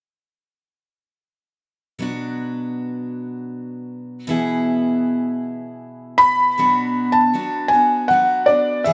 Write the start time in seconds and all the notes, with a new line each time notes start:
1.99 B2 F#3 B3 D4 F#4
4.27 B2 E3 B3 E4 G#4
6.18 B5
6.58 B2 F#3 B3 D4 F#4
7.12 A5
7.33 F#3 B3 D4 F#4
7.68 G#5
7.73 B3 D4 F#4
8.08 F#3 B3 D4 F#5
8.13 F#4
8.46 D4 F#4 D5
8.50 B3
8.84 B2 E3 B3 E4 G#4 E5